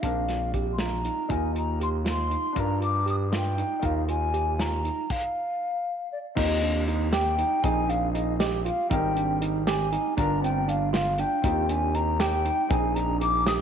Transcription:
0.01 1.09 A#1 medium
0.01 1.27 C4 medium
0.01 1.27 D4 soft
0.01 0.24 D4 medium
0.01 0.51 F5 medium
0.01 kick medium
0.01 closed hi-hat medium
0.06 1.28 A#4 medium
0.28 0.49 F4 medium
0.28 snare soft
0.28 closed hi-hat medium
0.54 0.74 G4 medium
0.54 kick medium
0.54 closed hi-hat medium
0.73 0.81 C6 medium
0.79 1.00 F4 medium
0.79 1.32 A#5 medium
0.79 snare loud
0.79 closed hi-hat medium
1.05 1.25 D#4 medium
1.05 closed hi-hat medium
1.29 2.36 D#2 medium
1.29 2.53 D#4 medium
1.29 1.50 D#4 medium
1.29 2.53 F4 soft
1.29 2.55 A#4 medium
1.29 1.55 G#5 medium
1.29 kick loud
1.29 closed hi-hat medium
1.55 1.76 F4 medium
1.55 1.79 A#5 medium
1.55 closed hi-hat medium
1.80 2.01 G4 medium
1.80 1.89 C6 medium
1.80 closed hi-hat medium
2.05 2.26 F4 medium
2.05 2.61 C6 medium
2.05 snare medium
2.05 closed hi-hat medium
2.30 2.51 D#4 medium
2.30 closed hi-hat medium
2.53 3.62 G2 loud
2.53 3.79 D4 medium
2.53 2.76 D4 medium
2.53 3.80 F4 soft
2.53 3.81 A#4 medium
2.53 kick medium
2.53 closed hi-hat medium
2.59 2.83 A#5 medium
2.80 3.01 F4 medium
2.80 3.06 D6 medium
2.80 closed hi-hat medium
3.06 3.27 G4 medium
3.06 3.16 D#6 medium
3.06 closed hi-hat medium
3.32 3.53 F4 medium
3.32 snare loud
3.32 closed hi-hat medium
3.36 3.87 G5 medium
3.58 3.78 D#4 medium
3.58 closed hi-hat medium
3.80 4.89 D#2 medium
3.80 5.06 D#4 soft
3.80 4.04 D#4 medium
3.80 5.07 F4 medium
3.80 5.07 A#4 medium
3.80 kick loud
3.80 closed hi-hat medium
3.85 4.08 F5 medium
4.08 4.29 F4 medium
4.08 4.63 G#5 medium
4.08 closed hi-hat medium
4.34 4.55 G4 medium
4.34 closed hi-hat medium
4.59 4.80 F4 medium
4.59 5.12 A#5 medium
4.59 snare loud
4.59 closed hi-hat medium
4.84 5.05 D#4 medium
4.84 closed hi-hat medium
5.10 6.12 F5 medium
5.10 kick medium
5.10 crash medium
6.12 6.18 D5 medium
6.35 7.43 D#2 medium
6.35 7.60 C4 medium
6.35 6.58 D#4 medium
6.35 7.61 F4 soft
6.35 7.62 G4 medium
6.35 6.83 D#5 loud
6.35 kick loud
6.35 crash loud
6.62 6.83 D4 medium
6.62 closed hi-hat medium
6.87 7.09 D#4 medium
6.87 closed hi-hat medium
7.12 7.34 G4 medium
7.12 7.65 G5 loud
7.12 snare loud
7.12 closed hi-hat medium
7.39 7.59 D#4 medium
7.39 closed hi-hat medium
7.62 8.70 A#1 loud
7.62 8.87 C4 medium
7.62 8.88 D#4 medium
7.62 7.85 D#4 medium
7.62 8.89 G#4 medium
7.62 7.91 G#5 loud
7.62 kick loud
7.62 closed hi-hat medium
7.88 8.09 D4 medium
7.88 8.12 F5 medium
7.88 closed hi-hat medium
8.13 8.35 D#4 medium
8.13 8.37 D#5 medium
8.13 closed hi-hat medium
8.39 8.61 G4 medium
8.39 8.45 D#5 medium
8.39 snare loud
8.39 closed hi-hat medium
8.64 8.86 F4 medium
8.64 8.88 F5 medium
8.64 closed hi-hat medium
8.89 9.97 G#1 medium
8.89 10.15 G3 medium
8.89 10.14 C4 medium
8.89 9.11 D#4 medium
8.89 10.16 A#4 medium
8.89 9.38 G5 medium
8.89 kick loud
8.89 closed hi-hat medium
9.16 9.36 D4 medium
9.16 closed hi-hat medium
9.41 9.62 D#4 medium
9.41 closed hi-hat medium
9.67 9.88 G4 medium
9.67 10.15 G#5 medium
9.67 snare loud
9.67 closed hi-hat medium
9.93 10.13 D#4 medium
9.93 closed hi-hat medium
10.17 11.23 G1 loud
10.17 10.38 D4 medium
10.17 11.41 D4 medium
10.17 11.42 F4 medium
10.17 11.43 A#4 medium
10.17 10.41 A#5 medium
10.17 kick loud
10.17 closed hi-hat medium
10.42 10.63 C4 medium
10.42 10.71 G5 medium
10.42 closed hi-hat medium
10.68 10.89 D4 medium
10.68 10.93 F5 medium
10.68 closed hi-hat medium
10.93 11.14 F4 medium
10.93 11.21 F5 medium
10.93 snare loud
10.93 closed hi-hat medium
11.18 11.39 D4 medium
11.18 11.72 G5 medium
11.18 closed hi-hat medium
11.42 12.50 D#2 loud
11.42 12.67 C4 medium
11.42 11.65 D#4 medium
11.42 12.68 F4 soft
11.42 12.69 G4 medium
11.42 kick loud
11.42 closed hi-hat medium
11.69 11.90 D4 medium
11.69 11.97 G#5 medium
11.69 closed hi-hat medium
11.94 12.15 D#4 medium
11.94 12.21 A#5 medium
11.94 closed hi-hat medium
12.20 12.41 G4 medium
12.20 12.72 G5 medium
12.20 snare loud
12.20 closed hi-hat medium
12.45 12.66 D#4 medium
12.45 closed hi-hat medium
12.68 13.61 A#1 loud
12.68 13.61 C4 medium
12.68 13.61 D#4 medium
12.68 12.91 D#4 medium
12.68 13.61 G#4 medium
12.68 12.97 G#5 medium
12.68 kick loud
12.68 closed hi-hat medium
12.95 13.17 D4 medium
12.95 13.21 A#5 loud
12.95 closed hi-hat medium
13.21 13.42 D#4 medium
13.21 13.45 D6 loud
13.21 closed hi-hat medium
13.46 13.61 G4 medium
13.46 13.53 D#6 loud
13.46 snare loud
13.46 closed hi-hat medium

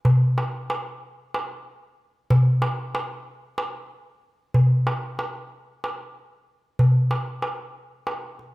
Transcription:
0.05 darbuka dum medium
0.38 darbuka tek soft
0.70 darbuka tek medium
1.34 darbuka tek medium
2.30 darbuka dum medium
2.62 darbuka tek medium
2.95 darbuka tek medium
3.58 darbuka tek medium
4.54 darbuka dum medium
4.87 darbuka tek medium
5.19 darbuka tek medium
5.84 darbuka tek soft
6.79 darbuka dum medium
7.11 darbuka tek soft
7.42 darbuka tek soft
8.07 darbuka tek soft
8.39 darbuka ka soft

